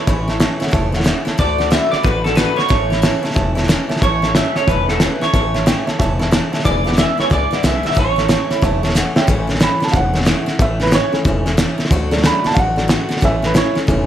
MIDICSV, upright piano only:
0, 0, Header, 1, 2, 480
1, 0, Start_track
1, 0, Key_signature, 3, "major"
1, 0, Tempo, 328767
1, 104, Time_signature, 4, 2, 24, 8
1, 20532, End_track
2, 0, Start_track
2, 0, Title_t, "Upright piano"
2, 0, Program_c, 0, 0
2, 101, Note_on_c, 0, 73, 90
2, 114, Note_on_c, 0, 76, 80
2, 121, Note_on_c, 0, 83, 105
2, 286, Note_off_c, 0, 73, 0
2, 293, Note_off_c, 0, 76, 0
2, 297, Note_off_c, 0, 83, 0
2, 412, Note_on_c, 0, 73, 77
2, 425, Note_on_c, 0, 76, 64
2, 438, Note_on_c, 0, 81, 83
2, 516, Note_off_c, 0, 73, 0
2, 523, Note_off_c, 0, 76, 0
2, 529, Note_off_c, 0, 81, 0
2, 585, Note_on_c, 0, 73, 91
2, 597, Note_on_c, 0, 76, 82
2, 601, Note_on_c, 0, 81, 104
2, 769, Note_off_c, 0, 73, 0
2, 775, Note_off_c, 0, 76, 0
2, 777, Note_off_c, 0, 81, 0
2, 886, Note_on_c, 0, 73, 91
2, 899, Note_on_c, 0, 76, 83
2, 915, Note_on_c, 0, 78, 104
2, 993, Note_off_c, 0, 73, 0
2, 1000, Note_off_c, 0, 76, 0
2, 1008, Note_off_c, 0, 78, 0
2, 1053, Note_on_c, 0, 73, 110
2, 1060, Note_on_c, 0, 76, 102
2, 1077, Note_on_c, 0, 81, 123
2, 1243, Note_off_c, 0, 73, 0
2, 1247, Note_off_c, 0, 76, 0
2, 1255, Note_off_c, 0, 81, 0
2, 1365, Note_on_c, 0, 73, 89
2, 1375, Note_on_c, 0, 76, 80
2, 1387, Note_on_c, 0, 78, 91
2, 1473, Note_off_c, 0, 73, 0
2, 1478, Note_off_c, 0, 76, 0
2, 1484, Note_off_c, 0, 78, 0
2, 1530, Note_on_c, 0, 73, 81
2, 1538, Note_on_c, 0, 76, 75
2, 1722, Note_off_c, 0, 73, 0
2, 1726, Note_off_c, 0, 76, 0
2, 1845, Note_on_c, 0, 73, 77
2, 1857, Note_on_c, 0, 76, 72
2, 1870, Note_on_c, 0, 81, 87
2, 1953, Note_off_c, 0, 73, 0
2, 1959, Note_off_c, 0, 76, 0
2, 1966, Note_off_c, 0, 81, 0
2, 2029, Note_on_c, 0, 74, 94
2, 2040, Note_on_c, 0, 78, 90
2, 2056, Note_on_c, 0, 81, 106
2, 2212, Note_off_c, 0, 74, 0
2, 2217, Note_off_c, 0, 78, 0
2, 2225, Note_off_c, 0, 81, 0
2, 2327, Note_on_c, 0, 74, 73
2, 2345, Note_on_c, 0, 78, 67
2, 2350, Note_on_c, 0, 81, 85
2, 2434, Note_off_c, 0, 74, 0
2, 2443, Note_off_c, 0, 78, 0
2, 2446, Note_off_c, 0, 81, 0
2, 2513, Note_on_c, 0, 74, 71
2, 2527, Note_on_c, 0, 78, 69
2, 2540, Note_on_c, 0, 83, 83
2, 2694, Note_off_c, 0, 74, 0
2, 2701, Note_off_c, 0, 78, 0
2, 2707, Note_off_c, 0, 83, 0
2, 2817, Note_on_c, 0, 74, 76
2, 2837, Note_on_c, 0, 78, 68
2, 2848, Note_on_c, 0, 83, 83
2, 2920, Note_off_c, 0, 74, 0
2, 2929, Note_off_c, 0, 78, 0
2, 2935, Note_off_c, 0, 83, 0
2, 2985, Note_on_c, 0, 74, 96
2, 3000, Note_on_c, 0, 78, 83
2, 3008, Note_on_c, 0, 83, 104
2, 3170, Note_off_c, 0, 74, 0
2, 3177, Note_off_c, 0, 78, 0
2, 3182, Note_off_c, 0, 83, 0
2, 3285, Note_on_c, 0, 74, 73
2, 3297, Note_on_c, 0, 78, 65
2, 3311, Note_on_c, 0, 81, 85
2, 3394, Note_off_c, 0, 74, 0
2, 3399, Note_off_c, 0, 78, 0
2, 3407, Note_off_c, 0, 81, 0
2, 3453, Note_on_c, 0, 74, 69
2, 3457, Note_on_c, 0, 78, 62
2, 3471, Note_on_c, 0, 81, 76
2, 3644, Note_off_c, 0, 74, 0
2, 3646, Note_off_c, 0, 78, 0
2, 3653, Note_off_c, 0, 81, 0
2, 3773, Note_on_c, 0, 78, 64
2, 3789, Note_on_c, 0, 83, 71
2, 3878, Note_off_c, 0, 78, 0
2, 3886, Note_off_c, 0, 83, 0
2, 3929, Note_on_c, 0, 73, 91
2, 3943, Note_on_c, 0, 76, 82
2, 3956, Note_on_c, 0, 81, 100
2, 4122, Note_off_c, 0, 73, 0
2, 4130, Note_off_c, 0, 76, 0
2, 4136, Note_off_c, 0, 81, 0
2, 4243, Note_on_c, 0, 73, 75
2, 4260, Note_on_c, 0, 76, 67
2, 4271, Note_on_c, 0, 83, 83
2, 4353, Note_off_c, 0, 73, 0
2, 4361, Note_off_c, 0, 76, 0
2, 4367, Note_off_c, 0, 83, 0
2, 4417, Note_on_c, 0, 73, 85
2, 4430, Note_on_c, 0, 76, 81
2, 4443, Note_on_c, 0, 81, 102
2, 4607, Note_off_c, 0, 73, 0
2, 4613, Note_off_c, 0, 76, 0
2, 4619, Note_off_c, 0, 81, 0
2, 4718, Note_on_c, 0, 73, 88
2, 4730, Note_on_c, 0, 76, 83
2, 4742, Note_on_c, 0, 81, 104
2, 4831, Note_off_c, 0, 73, 0
2, 4837, Note_off_c, 0, 76, 0
2, 4843, Note_off_c, 0, 81, 0
2, 4887, Note_on_c, 0, 73, 104
2, 4900, Note_on_c, 0, 76, 99
2, 4912, Note_on_c, 0, 81, 123
2, 5082, Note_off_c, 0, 73, 0
2, 5088, Note_off_c, 0, 76, 0
2, 5094, Note_off_c, 0, 81, 0
2, 5192, Note_on_c, 0, 73, 86
2, 5203, Note_on_c, 0, 76, 80
2, 5218, Note_on_c, 0, 81, 94
2, 5308, Note_off_c, 0, 73, 0
2, 5313, Note_off_c, 0, 76, 0
2, 5321, Note_off_c, 0, 81, 0
2, 5372, Note_on_c, 0, 73, 82
2, 5388, Note_on_c, 0, 76, 72
2, 5401, Note_on_c, 0, 81, 88
2, 5564, Note_off_c, 0, 73, 0
2, 5572, Note_off_c, 0, 76, 0
2, 5579, Note_off_c, 0, 81, 0
2, 5669, Note_on_c, 0, 73, 74
2, 5683, Note_on_c, 0, 76, 74
2, 5704, Note_on_c, 0, 81, 88
2, 5787, Note_off_c, 0, 73, 0
2, 5793, Note_off_c, 0, 76, 0
2, 5804, Note_off_c, 0, 81, 0
2, 5848, Note_on_c, 0, 73, 97
2, 5862, Note_on_c, 0, 76, 83
2, 5871, Note_on_c, 0, 81, 97
2, 6043, Note_off_c, 0, 73, 0
2, 6049, Note_off_c, 0, 76, 0
2, 6054, Note_off_c, 0, 81, 0
2, 6166, Note_on_c, 0, 73, 72
2, 6177, Note_on_c, 0, 76, 67
2, 6185, Note_on_c, 0, 81, 82
2, 6275, Note_off_c, 0, 73, 0
2, 6280, Note_off_c, 0, 76, 0
2, 6284, Note_off_c, 0, 81, 0
2, 6330, Note_on_c, 0, 73, 73
2, 6348, Note_on_c, 0, 76, 68
2, 6356, Note_on_c, 0, 81, 83
2, 6523, Note_off_c, 0, 73, 0
2, 6532, Note_off_c, 0, 76, 0
2, 6536, Note_off_c, 0, 81, 0
2, 6645, Note_on_c, 0, 73, 72
2, 6653, Note_on_c, 0, 76, 71
2, 6664, Note_on_c, 0, 81, 84
2, 6755, Note_off_c, 0, 73, 0
2, 6758, Note_off_c, 0, 76, 0
2, 6764, Note_off_c, 0, 81, 0
2, 6832, Note_on_c, 0, 73, 92
2, 6837, Note_on_c, 0, 76, 88
2, 6853, Note_on_c, 0, 81, 99
2, 7014, Note_off_c, 0, 73, 0
2, 7017, Note_off_c, 0, 76, 0
2, 7025, Note_off_c, 0, 81, 0
2, 7140, Note_on_c, 0, 73, 72
2, 7152, Note_on_c, 0, 76, 65
2, 7164, Note_on_c, 0, 78, 81
2, 7242, Note_off_c, 0, 73, 0
2, 7248, Note_off_c, 0, 76, 0
2, 7254, Note_off_c, 0, 78, 0
2, 7302, Note_on_c, 0, 73, 67
2, 7314, Note_on_c, 0, 76, 66
2, 7330, Note_on_c, 0, 81, 75
2, 7490, Note_off_c, 0, 73, 0
2, 7496, Note_off_c, 0, 76, 0
2, 7503, Note_off_c, 0, 81, 0
2, 7613, Note_on_c, 0, 73, 67
2, 7627, Note_on_c, 0, 76, 66
2, 7637, Note_on_c, 0, 81, 76
2, 7719, Note_off_c, 0, 73, 0
2, 7726, Note_off_c, 0, 76, 0
2, 7730, Note_off_c, 0, 81, 0
2, 7774, Note_on_c, 0, 73, 94
2, 7787, Note_on_c, 0, 76, 84
2, 7805, Note_on_c, 0, 81, 104
2, 7966, Note_off_c, 0, 73, 0
2, 7972, Note_off_c, 0, 76, 0
2, 7981, Note_off_c, 0, 81, 0
2, 8084, Note_on_c, 0, 73, 75
2, 8098, Note_on_c, 0, 76, 72
2, 8112, Note_on_c, 0, 81, 86
2, 8194, Note_off_c, 0, 73, 0
2, 8201, Note_off_c, 0, 76, 0
2, 8208, Note_off_c, 0, 81, 0
2, 8258, Note_on_c, 0, 73, 88
2, 8269, Note_on_c, 0, 76, 82
2, 8278, Note_on_c, 0, 79, 103
2, 8448, Note_off_c, 0, 73, 0
2, 8453, Note_off_c, 0, 76, 0
2, 8458, Note_off_c, 0, 79, 0
2, 8558, Note_on_c, 0, 73, 94
2, 8573, Note_on_c, 0, 76, 82
2, 8583, Note_on_c, 0, 81, 101
2, 8671, Note_off_c, 0, 73, 0
2, 8679, Note_off_c, 0, 76, 0
2, 8684, Note_off_c, 0, 81, 0
2, 8738, Note_on_c, 0, 73, 114
2, 8748, Note_on_c, 0, 76, 102
2, 8763, Note_on_c, 0, 81, 125
2, 8928, Note_off_c, 0, 73, 0
2, 8933, Note_off_c, 0, 76, 0
2, 8940, Note_off_c, 0, 81, 0
2, 9039, Note_on_c, 0, 73, 88
2, 9055, Note_on_c, 0, 76, 81
2, 9061, Note_on_c, 0, 81, 98
2, 9152, Note_off_c, 0, 73, 0
2, 9160, Note_off_c, 0, 76, 0
2, 9163, Note_off_c, 0, 81, 0
2, 9219, Note_on_c, 0, 73, 82
2, 9226, Note_on_c, 0, 76, 73
2, 9235, Note_on_c, 0, 81, 93
2, 9408, Note_off_c, 0, 73, 0
2, 9412, Note_off_c, 0, 76, 0
2, 9416, Note_off_c, 0, 81, 0
2, 9515, Note_on_c, 0, 73, 88
2, 9524, Note_on_c, 0, 76, 74
2, 9536, Note_on_c, 0, 81, 88
2, 9630, Note_off_c, 0, 73, 0
2, 9635, Note_off_c, 0, 76, 0
2, 9640, Note_off_c, 0, 81, 0
2, 9686, Note_on_c, 0, 71, 90
2, 9697, Note_on_c, 0, 76, 86
2, 9714, Note_on_c, 0, 80, 101
2, 9882, Note_off_c, 0, 71, 0
2, 9887, Note_off_c, 0, 76, 0
2, 9896, Note_off_c, 0, 80, 0
2, 10005, Note_on_c, 0, 71, 77
2, 10018, Note_on_c, 0, 76, 71
2, 10033, Note_on_c, 0, 78, 82
2, 10115, Note_off_c, 0, 71, 0
2, 10122, Note_off_c, 0, 76, 0
2, 10129, Note_off_c, 0, 78, 0
2, 10181, Note_on_c, 0, 71, 72
2, 10189, Note_on_c, 0, 76, 69
2, 10202, Note_on_c, 0, 80, 87
2, 10370, Note_off_c, 0, 71, 0
2, 10374, Note_off_c, 0, 76, 0
2, 10380, Note_off_c, 0, 80, 0
2, 10495, Note_on_c, 0, 71, 78
2, 10508, Note_on_c, 0, 76, 71
2, 10525, Note_on_c, 0, 80, 88
2, 10600, Note_off_c, 0, 71, 0
2, 10607, Note_off_c, 0, 76, 0
2, 10615, Note_off_c, 0, 80, 0
2, 10663, Note_on_c, 0, 71, 92
2, 10677, Note_on_c, 0, 76, 85
2, 10688, Note_on_c, 0, 80, 101
2, 10850, Note_off_c, 0, 71, 0
2, 10858, Note_off_c, 0, 76, 0
2, 10863, Note_off_c, 0, 80, 0
2, 10978, Note_on_c, 0, 71, 72
2, 10992, Note_on_c, 0, 76, 70
2, 11002, Note_on_c, 0, 78, 80
2, 11082, Note_off_c, 0, 71, 0
2, 11089, Note_off_c, 0, 76, 0
2, 11094, Note_off_c, 0, 78, 0
2, 11145, Note_on_c, 0, 71, 72
2, 11161, Note_on_c, 0, 76, 65
2, 11177, Note_on_c, 0, 80, 76
2, 11332, Note_off_c, 0, 71, 0
2, 11340, Note_off_c, 0, 76, 0
2, 11347, Note_off_c, 0, 80, 0
2, 11457, Note_on_c, 0, 71, 69
2, 11478, Note_on_c, 0, 76, 61
2, 11487, Note_on_c, 0, 78, 79
2, 11562, Note_off_c, 0, 71, 0
2, 11572, Note_off_c, 0, 76, 0
2, 11576, Note_off_c, 0, 78, 0
2, 11625, Note_on_c, 0, 73, 93
2, 11636, Note_on_c, 0, 76, 90
2, 11647, Note_on_c, 0, 81, 103
2, 11812, Note_off_c, 0, 73, 0
2, 11817, Note_off_c, 0, 76, 0
2, 11823, Note_off_c, 0, 81, 0
2, 11931, Note_on_c, 0, 73, 76
2, 11946, Note_on_c, 0, 76, 73
2, 11958, Note_on_c, 0, 81, 81
2, 12039, Note_off_c, 0, 73, 0
2, 12046, Note_off_c, 0, 76, 0
2, 12052, Note_off_c, 0, 81, 0
2, 12098, Note_on_c, 0, 73, 75
2, 12118, Note_on_c, 0, 76, 72
2, 12131, Note_on_c, 0, 81, 89
2, 12288, Note_off_c, 0, 73, 0
2, 12298, Note_off_c, 0, 76, 0
2, 12305, Note_off_c, 0, 81, 0
2, 12412, Note_on_c, 0, 73, 96
2, 12425, Note_on_c, 0, 76, 83
2, 12435, Note_on_c, 0, 83, 100
2, 12519, Note_off_c, 0, 73, 0
2, 12525, Note_off_c, 0, 76, 0
2, 12531, Note_off_c, 0, 83, 0
2, 12592, Note_on_c, 0, 73, 117
2, 12607, Note_on_c, 0, 76, 106
2, 12625, Note_on_c, 0, 81, 127
2, 12775, Note_off_c, 0, 73, 0
2, 12783, Note_off_c, 0, 76, 0
2, 12792, Note_off_c, 0, 81, 0
2, 12888, Note_on_c, 0, 73, 92
2, 12908, Note_on_c, 0, 76, 77
2, 12919, Note_on_c, 0, 81, 95
2, 12997, Note_off_c, 0, 73, 0
2, 13007, Note_off_c, 0, 76, 0
2, 13012, Note_off_c, 0, 81, 0
2, 13071, Note_on_c, 0, 73, 83
2, 13083, Note_on_c, 0, 76, 74
2, 13101, Note_on_c, 0, 78, 94
2, 13255, Note_off_c, 0, 73, 0
2, 13261, Note_off_c, 0, 76, 0
2, 13270, Note_off_c, 0, 78, 0
2, 13376, Note_on_c, 0, 73, 86
2, 13383, Note_on_c, 0, 76, 81
2, 13399, Note_on_c, 0, 79, 88
2, 13481, Note_off_c, 0, 73, 0
2, 13484, Note_off_c, 0, 76, 0
2, 13493, Note_off_c, 0, 79, 0
2, 13549, Note_on_c, 0, 52, 59
2, 13556, Note_on_c, 0, 57, 51
2, 13570, Note_on_c, 0, 61, 66
2, 14058, Note_on_c, 0, 83, 97
2, 14342, Note_off_c, 0, 83, 0
2, 14370, Note_on_c, 0, 81, 86
2, 14478, Note_on_c, 0, 77, 69
2, 14514, Note_off_c, 0, 77, 0
2, 14522, Note_off_c, 0, 81, 0
2, 14544, Note_on_c, 0, 78, 96
2, 15411, Note_off_c, 0, 52, 0
2, 15415, Note_off_c, 0, 57, 0
2, 15421, Note_off_c, 0, 61, 0
2, 15458, Note_off_c, 0, 78, 0
2, 15504, Note_on_c, 0, 76, 82
2, 15785, Note_off_c, 0, 76, 0
2, 15801, Note_on_c, 0, 71, 92
2, 15958, Note_off_c, 0, 71, 0
2, 15980, Note_on_c, 0, 73, 109
2, 16242, Note_on_c, 0, 52, 61
2, 16249, Note_on_c, 0, 57, 56
2, 16262, Note_on_c, 0, 61, 68
2, 16263, Note_off_c, 0, 73, 0
2, 17325, Note_off_c, 0, 52, 0
2, 17328, Note_off_c, 0, 57, 0
2, 17335, Note_off_c, 0, 61, 0
2, 17685, Note_on_c, 0, 54, 59
2, 17691, Note_on_c, 0, 57, 56
2, 17699, Note_on_c, 0, 62, 64
2, 17900, Note_on_c, 0, 83, 106
2, 18181, Note_off_c, 0, 83, 0
2, 18205, Note_on_c, 0, 81, 102
2, 18315, Note_on_c, 0, 77, 74
2, 18351, Note_off_c, 0, 77, 0
2, 18358, Note_off_c, 0, 81, 0
2, 18382, Note_on_c, 0, 78, 101
2, 18613, Note_off_c, 0, 54, 0
2, 18625, Note_off_c, 0, 57, 0
2, 18628, Note_off_c, 0, 62, 0
2, 18635, Note_on_c, 0, 54, 53
2, 18647, Note_on_c, 0, 57, 49
2, 18650, Note_on_c, 0, 62, 57
2, 18800, Note_off_c, 0, 54, 0
2, 18806, Note_off_c, 0, 57, 0
2, 18808, Note_off_c, 0, 62, 0
2, 19296, Note_off_c, 0, 78, 0
2, 19302, Note_on_c, 0, 52, 58
2, 19311, Note_on_c, 0, 57, 53
2, 19318, Note_on_c, 0, 61, 67
2, 19345, Note_on_c, 0, 76, 92
2, 19623, Note_off_c, 0, 76, 0
2, 19649, Note_on_c, 0, 71, 90
2, 19800, Note_off_c, 0, 71, 0
2, 19802, Note_on_c, 0, 64, 86
2, 19818, Note_on_c, 0, 73, 105
2, 20079, Note_off_c, 0, 64, 0
2, 20099, Note_off_c, 0, 73, 0
2, 20234, Note_off_c, 0, 52, 0
2, 20238, Note_off_c, 0, 57, 0
2, 20245, Note_off_c, 0, 61, 0
2, 20256, Note_on_c, 0, 52, 50
2, 20260, Note_on_c, 0, 57, 47
2, 20267, Note_on_c, 0, 61, 56
2, 20532, Note_off_c, 0, 52, 0
2, 20532, Note_off_c, 0, 57, 0
2, 20532, Note_off_c, 0, 61, 0
2, 20532, End_track
0, 0, End_of_file